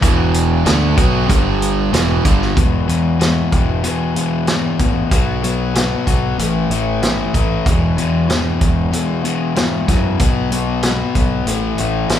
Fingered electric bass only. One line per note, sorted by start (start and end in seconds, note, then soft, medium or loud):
0.03 0.62 E1 medium
0.66 0.96 D2 medium
0.98 1.27 B1 medium
1.29 1.89 G1 medium
1.93 2.23 E1 medium
2.25 2.55 G1 medium
2.57 2.83 E1 medium
2.88 3.41 E2 medium
3.53 3.79 E1 medium
4.80 5.06 A1 medium
5.11 5.90 B1 medium
6.07 6.33 B1 medium
6.39 6.65 A1 medium
6.70 7.23 A1 medium
7.34 7.60 A1 medium
7.66 7.92 E1 medium
7.98 8.50 E2 medium
8.61 8.87 E1 medium
9.88 10.14 F#2 medium
10.20 10.98 B1 medium
11.15 11.41 B1 medium
11.47 11.73 A1 medium
11.79 12.05 A1 medium
12.10 12.20 A1 medium